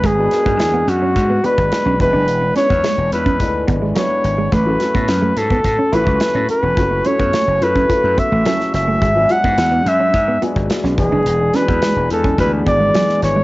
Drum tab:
HH |x-x-x-x-x-x-x-x-|x-x-x-x-x-x-x-x-|x-x-x-x-x-x-x-x-|x-x-x-x-x-x-x-x-|
SD |--o-o-------o---|--o-o-------o---|--o-o-------o---|----o-------ooo-|
BD |o--o----o--o--o-|---o---oo-o-----|o--o---oo--o----|o--o---oo-o-----|

HH |x-x-x-x-x-x-x-x-|x-x-x-x-x-x-x-x-|
SD |----o-------oo--|--o-o-------ooo-|
BD |o--o----o--o--o-|---o---oo-o-----|